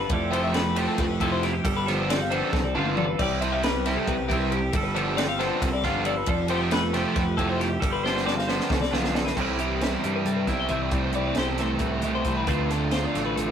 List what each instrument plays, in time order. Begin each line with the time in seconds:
Already playing: clean electric guitar D3 G3 C4 F4 A4
0.00 clean electric guitar B4
0.10 picked electric bass F1, clean electric guitar F3 A3 E4 D5, kick, ride
0.14 clean electric guitar G4 A4
0.31 overdriven electric guitar C3 F3 A3 C4, clean electric guitar G4 C5, ride
0.44 clean electric guitar E5
0.54 clean electric guitar A3 B4, snare, ride
0.76 overdriven electric guitar C3 F3 A3 C4, clean electric guitar G4 C5, ride
0.88 clean electric guitar A4
0.98 picked electric bass F1, clean electric guitar B4, kick, snare, ride
1.20 picked electric bass F1, clean electric guitar C3 E4 A4, overdriven electric guitar C3 F3 A3 C4, kick, ride
1.32 clean electric guitar C5
1.43 clean electric guitar E4 G4, snare, ride
1.53 clean electric guitar G4
1.64 picked electric bass G1, clean electric guitar G3 A4, kick, ride
1.76 clean electric guitar B4
1.86 overdriven electric guitar D3 F3 B3 D4, clean electric guitar A4 C5, snare, ride
2.09 clean electric guitar C4 A4 D5, snare, ride
2.21 clean electric guitar F5
2.31 overdriven electric guitar D3 F3 B3 D4, clean electric guitar A4 C5, ride
2.53 picked electric bass C2, clean electric guitar A4, kick, snare
2.64 clean electric guitar D5
2.74 picked electric bass G1, overdriven electric guitar D3 F3 B3 D4, clean electric guitar D3 F4 F5, high tom
2.85 mid tom
2.97 clean electric guitar A4 D5, mid tom
3.08 clean electric guitar B4
3.19 picked electric bass C2, clean electric guitar C3 G3 E4 G4 D5, kick, crash
3.23 clean electric guitar B4
3.41 overdriven electric guitar C3 G3 C4 E4, clean electric guitar E4 C5, ride
3.52 clean electric guitar G4 E5
3.63 clean electric guitar G3 B4, snare, ride
3.86 overdriven electric guitar C3 G3 C4 E4, clean electric guitar E4 C5, snare, ride
3.96 clean electric guitar G4 A4
4.08 picked electric bass C2, clean electric guitar B4, kick, ride
4.28 picked electric bass C2, overdriven electric guitar C3 G3 C4 E4, clean electric guitar C3 G4, kick, ride
4.33 clean electric guitar E4
4.40 clean electric guitar B4
4.51 clean electric guitar G4, ride
4.72 picked electric bass G1, clean electric guitar G3 A4, kick, ride
4.83 clean electric guitar B4
4.95 overdriven electric guitar D3 F3 B3 D4, clean electric guitar A4 C5, ride
5.17 clean electric guitar C4 A4 D5, snare, ride
5.29 clean electric guitar F5
5.39 overdriven electric guitar D3 F3 B3 D4, clean electric guitar A4 C5, snare, ride
5.61 picked electric bass C2, clean electric guitar A4, kick, ride
5.73 clean electric guitar D5
5.84 picked electric bass G1, clean electric guitar D3 F4 F5, overdriven electric guitar D3 F3 B3 D4, kick, snare, ride
6.05 clean electric guitar A4 D5, ride
6.17 clean electric guitar B4
6.26 picked electric bass F1, clean electric guitar F3 A4 D5, kick, ride
6.48 overdriven electric guitar C3 F3 A3 C4, clean electric guitar G4 C5, ride
6.61 clean electric guitar E5
6.71 clean electric guitar A3 B4, snare, ride
6.93 overdriven electric guitar C3 F3 A3 C4, clean electric guitar G4 C5, snare, ride
7.05 clean electric guitar A4
7.16 picked electric bass F1, clean electric guitar B4, kick, snare, ride
7.37 picked electric bass F1, clean electric guitar C3 E4 A4, overdriven electric guitar C3 F3 A3 C4, kick, ride
7.49 clean electric guitar C5
7.59 clean electric guitar G4, snare, ride
7.80 picked electric bass G1, clean electric guitar G3 A4, kick, ride
7.90 clean electric guitar B4 C5
8.03 overdriven electric guitar D3 F3 B3 D4, clean electric guitar C5, snare
8.17 snare
8.26 clean electric guitar C4 C5 D5, snare
8.37 clean electric guitar F5, snare
8.47 overdriven electric guitar D3 F3 B3 D4, clean electric guitar C5, snare
8.60 snare
8.70 picked electric bass C2, clean electric guitar A4, kick, snare
8.81 clean electric guitar D5, snare
8.91 picked electric bass B1, clean electric guitar D3 F4 F5, overdriven electric guitar D3 F3 B3 D4, snare
9.04 snare
9.14 clean electric guitar A4 D5, snare
9.25 clean electric guitar B4 C5, snare
9.36 picked electric bass C2, overdriven electric guitar C3 E3 G3 C4 E4, clean electric guitar C3 G3 E4 A4, kick, crash
9.40 clean electric guitar G4 B4
9.59 overdriven electric guitar G3 C4 E4, clean electric guitar G4, closed hi-hat
9.81 overdriven electric guitar C3 E3 G3 C4 E4, clean electric guitar E4 B4, snare, closed hi-hat
9.93 clean electric guitar G4 D5
10.04 picked electric bass G2, clean electric guitar G3, overdriven electric guitar G3 C4 E4, closed hi-hat
10.16 clean electric guitar B4
10.25 picked electric bass G2, clean electric guitar A4, closed hi-hat
10.37 clean electric guitar B4
10.47 picked electric bass B1, overdriven electric guitar G3 C4 E4, clean electric guitar E4 D5, kick, snare, closed hi-hat
10.60 clean electric guitar G5
10.69 picked electric bass C2, clean electric guitar C3 E5, overdriven electric guitar E3 G3 C4, kick, closed hi-hat
10.73 overdriven electric guitar E4
10.82 clean electric guitar D5
10.91 picked electric bass C2, overdriven electric guitar C3 E3 A3 C4 E4, clean electric guitar C3, kick, closed hi-hat
11.04 clean electric guitar C5
11.13 overdriven electric guitar E4, clean electric guitar D5, closed hi-hat
11.17 overdriven electric guitar A3 C4
11.27 clean electric guitar D5
11.35 picked electric bass C2, overdriven electric guitar C3 E3 A3 C4 E4, clean electric guitar G4 C5, snare, closed hi-hat
11.49 clean electric guitar A4
11.58 clean electric guitar A3 C5, overdriven electric guitar C4 E4, snare, closed hi-hat
11.63 overdriven electric guitar A3
11.72 clean electric guitar B4
11.79 picked electric bass C2, clean electric guitar A2, kick, closed hi-hat
11.93 clean electric guitar G4
12.02 picked electric bass C2, clean electric guitar B2, overdriven electric guitar C4 E4, closed hi-hat
12.07 overdriven electric guitar A3
12.15 clean electric guitar C5
12.24 picked electric bass C2, clean electric guitar C3, overdriven electric guitar E3 A3 C4, kick, closed hi-hat
12.29 overdriven electric guitar E4
12.37 clean electric guitar B4
12.47 picked electric bass D2, clean electric guitar D3 A3 C4 F4 B4 C5, overdriven electric guitar D3 A3 D4 F4, kick, closed hi-hat
12.70 overdriven electric guitar A3 D4 F4, clean electric guitar A4, snare, closed hi-hat
12.91 overdriven electric guitar D3 A3 D4 F4, clean electric guitar F4 C5, snare, closed hi-hat
13.04 clean electric guitar D5
13.14 picked electric bass A1, clean electric guitar A3, overdriven electric guitar A3 D4 F4, snare, closed hi-hat
13.26 clean electric guitar B4
13.36 picked electric bass A1, clean electric guitar A4, closed hi-hat
13.47 clean electric guitar B4